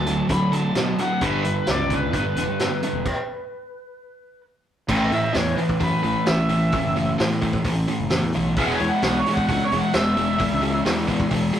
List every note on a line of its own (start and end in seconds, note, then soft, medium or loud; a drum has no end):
0.00 0.21 D2 medium
0.00 0.31 A5 medium
0.06 0.27 D3 medium
0.06 0.28 F#3 medium
0.06 closed hi-hat medium
0.29 0.67 D3 medium
0.29 0.50 D3 medium
0.29 0.51 F#3 medium
0.29 0.53 B5 loud
0.29 kick loud
0.29 closed hi-hat medium
0.52 0.73 D3 medium
0.52 0.73 F#3 medium
0.52 1.00 A5 medium
0.52 closed hi-hat medium
0.75 0.94 B2 medium
0.75 0.96 D3 medium
0.75 0.96 F#3 medium
0.75 snare loud
0.75 closed hi-hat medium
0.98 1.20 D3 medium
0.98 1.20 F#3 medium
0.98 1.23 F#5 medium
0.98 closed hi-hat medium
1.21 1.59 G1 loud
1.21 1.43 G2 medium
1.21 1.44 D3 medium
1.21 1.44 G3 medium
1.21 1.70 B4 medium
1.21 kick loud
1.21 closed hi-hat medium
1.44 1.65 G2 medium
1.44 1.65 D3 medium
1.44 closed hi-hat medium
1.67 2.13 C#2 medium
1.67 1.89 G2 medium
1.67 1.89 D3 medium
1.67 1.93 D5 medium
1.67 snare loud
1.67 closed hi-hat medium
1.90 2.12 G2 medium
1.90 2.12 D3 medium
1.90 4.41 B4 medium
1.90 kick medium
1.90 closed hi-hat medium
2.13 2.32 G2 medium
2.13 2.35 G2 medium
2.13 2.35 D3 medium
2.13 kick loud
2.13 closed hi-hat medium
2.36 2.45 E1 medium
2.36 2.58 G2 medium
2.36 2.58 D3 medium
2.36 closed hi-hat medium
2.48 2.66 G2 medium
2.59 2.81 G2 medium
2.59 2.81 D3 medium
2.59 snare medium
2.59 closed hi-hat medium
2.83 3.04 G2 medium
2.83 3.04 D3 medium
2.83 closed hi-hat medium
2.93 3.03 E1 medium
3.06 kick loud
3.06 crash medium
4.89 5.08 A1 medium
4.89 5.10 A2 medium
4.89 5.10 E3 medium
4.89 5.11 A3 medium
4.89 kick loud
4.89 crash loud
5.11 5.32 A2 medium
5.11 5.22 A2 medium
5.11 5.32 E3 medium
5.11 5.36 E5 medium
5.11 open hi-hat soft
5.33 5.54 E2 medium
5.33 5.55 A2 medium
5.33 5.55 E3 medium
5.33 5.57 C#5 medium
5.33 snare loud
5.33 open hi-hat medium
5.57 5.78 A2 medium
5.57 5.79 E3 medium
5.57 5.80 B4 medium
5.57 open hi-hat soft
5.69 kick medium
5.80 5.90 F#2 medium
5.80 6.01 A2 medium
5.80 6.01 E3 medium
5.80 6.04 B4 medium
5.80 kick medium
5.80 open hi-hat medium
6.03 6.14 A1 medium
6.03 6.24 A2 medium
6.03 6.24 E3 medium
6.03 6.27 B4 medium
6.03 open hi-hat soft
6.26 6.75 A1 medium
6.26 6.47 A2 medium
6.26 6.48 E3 medium
6.26 7.17 E5 medium
6.26 snare loud
6.26 open hi-hat medium
6.49 6.70 A2 medium
6.49 6.71 E3 medium
6.49 open hi-hat medium
6.72 6.94 A2 medium
6.72 6.94 E3 medium
6.72 kick loud
6.72 open hi-hat medium
6.85 7.13 F#1 medium
6.96 7.17 A2 medium
6.96 7.17 E3 medium
6.96 open hi-hat soft
7.19 7.40 A2 medium
7.19 7.57 A2 loud
7.19 7.39 E3 medium
7.19 snare loud
7.19 open hi-hat medium
7.31 snare soft
7.42 7.63 A2 medium
7.42 7.63 E3 medium
7.42 kick medium
7.42 open hi-hat medium
7.53 kick medium
7.64 7.83 A1 medium
7.64 7.86 A2 medium
7.64 7.86 E3 medium
7.64 kick medium
7.64 open hi-hat medium
7.88 8.09 A2 medium
7.88 8.09 E3 medium
7.88 open hi-hat medium
8.00 8.18 F#1 medium
8.10 8.32 A2 medium
8.10 8.32 E3 medium
8.10 snare medium
8.10 open hi-hat medium
8.23 8.32 E2 medium
8.33 8.58 B1 medium
8.33 8.55 A2 medium
8.33 8.55 E3 medium
8.33 open hi-hat medium
8.57 8.75 E1 medium
8.57 8.79 E3 medium
8.57 8.79 G#3 medium
8.57 8.79 B3 medium
8.57 8.73 F#5 loud
8.57 kick loud
8.57 open hi-hat medium
8.72 8.87 C#5 medium
8.80 8.89 E2 medium
8.80 9.01 E3 medium
8.80 9.01 G#3 loud
8.80 open hi-hat soft
8.88 9.02 F#5 medium
9.02 9.21 B1 medium
9.02 9.24 E3 medium
9.02 9.24 G#3 medium
9.02 9.18 F#5 medium
9.02 snare loud
9.02 open hi-hat medium
9.18 9.33 C#5 medium
9.26 9.47 E3 medium
9.26 9.48 G#3 medium
9.26 open hi-hat medium
9.33 9.46 F#5 medium
9.33 kick medium
9.47 9.58 C#2 medium
9.47 9.70 E3 medium
9.47 9.70 G#3 medium
9.47 9.63 F#5 medium
9.47 kick medium
9.47 open hi-hat medium
9.65 9.79 C#5 loud
9.72 9.81 E1 medium
9.72 9.92 E3 medium
9.72 9.93 G#3 medium
9.72 open hi-hat medium
9.78 9.93 F#5 medium
9.93 10.41 E1 medium
9.93 10.15 E3 medium
9.93 10.15 G#3 medium
9.93 10.84 E5 loud
9.93 snare loud
9.93 open hi-hat medium
10.17 10.37 E3 medium
10.17 10.37 G#3 medium
10.17 open hi-hat medium
10.38 10.60 E3 medium
10.38 10.60 G#3 medium
10.38 kick loud
10.38 open hi-hat medium
10.51 10.80 C#2 medium
10.61 10.83 E3 medium
10.61 10.83 G#3 medium
10.61 open hi-hat soft
10.85 11.23 E2 loud
10.85 11.06 E3 medium
10.85 11.06 G#3 medium
10.85 snare loud
10.85 open hi-hat medium
10.97 snare soft
11.07 11.29 E3 medium
11.07 11.29 G#3 medium
11.07 kick medium
11.07 open hi-hat medium
11.20 kick medium
11.31 11.50 E1 medium
11.31 11.52 E3 medium
11.31 11.52 G#3 medium
11.31 kick medium
11.31 open hi-hat medium
11.53 11.60 E3 medium
11.53 11.60 G#3 medium
11.53 open hi-hat medium